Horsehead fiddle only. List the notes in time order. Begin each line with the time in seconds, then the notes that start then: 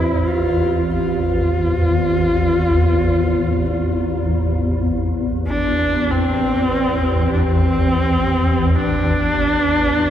Already playing: E4
0.27 F4
0.95 F4
5.47 D4
6.11 C4
7.34 D4
7.43 C4
8.75 D4